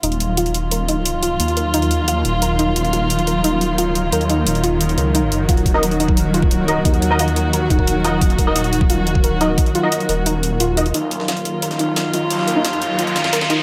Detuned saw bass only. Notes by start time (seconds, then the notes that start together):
0.03 D#1
1.40 D#2
2.25 D#1
2.76 D#1
3.71 D1
3.98 C#1
4.12 D#2
4.47 D#1
4.98 C#2
5.32 F#1
5.49 D#1
6.85 D#2
7.70 D#1
8.21 D#1
9.16 D1
9.43 C#1
10.09 D#1
10.94 D#1
11.89 D1
12.16 C#1
12.30 D#2
13.16 D#1